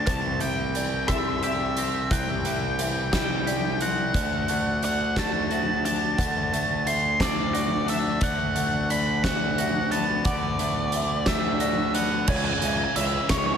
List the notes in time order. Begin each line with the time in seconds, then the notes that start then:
0.07 C2 C3 C5 A5, kick, closed hi-hat
0.40 G3 E5 G5, closed hi-hat
0.74 E3 D5, closed hi-hat
1.08 G3 E5, kick, cross-stick, closed hi-hat
1.43 G4 E5, closed hi-hat
1.77 C4, closed hi-hat
2.11 C2 C3 G5 F#6, kick, closed hi-hat
2.45 G3 E5, closed hi-hat
2.79 E3 E5, closed hi-hat
3.12 G3 G5, kick, snare, closed hi-hat
3.47 G4 D5, closed hi-hat
3.81 C4 F#5, closed hi-hat
4.14 D2 D3 D5, kick, closed hi-hat
4.48 A3 F#5, closed hi-hat
4.83 D3 D5 F#5, closed hi-hat
5.16 A3 A5, kick, snare, closed hi-hat
5.50 F#4 E5, closed hi-hat
5.85 D4 A5, closed hi-hat
6.18 D2 D3 F#5, kick, closed hi-hat
6.52 A3 E5, closed hi-hat
6.86 D3 E5 C6, closed hi-hat
7.20 A3 D5, kick, snare, closed hi-hat
7.53 F#4 D5, closed hi-hat
7.87 D4 E5, closed hi-hat
8.21 D2 D3 D5 F#5, kick, closed hi-hat
8.55 A3 F#5, closed hi-hat
8.90 D3 D5 B5, closed hi-hat
9.23 A3 F#5, kick, snare, closed hi-hat
9.58 F#4 E5, closed hi-hat
9.91 B3 A5, closed hi-hat
10.25 D2 D3 D5 F#5, kick, closed hi-hat
10.59 A3 E5, closed hi-hat
10.92 D3 E5, closed hi-hat
11.26 A3 E5, kick, snare, closed hi-hat
11.60 F#4 D5, closed hi-hat
11.95 B3 F#5, closed hi-hat
12.28 C#2 C#3 C#5 G#5, kick, crash
12.36 G#5
12.45 G#5
12.53 G#5
12.60 C#2 G#5, closed hi-hat
12.64 E5
12.68 G#5
12.77 G#5
12.84 G#5
12.96 C#2 E3 C#5 E5, closed hi-hat
13.29 C#2 C#5, kick, snare, closed hi-hat
13.38 C#5
13.46 C#5
13.54 C#5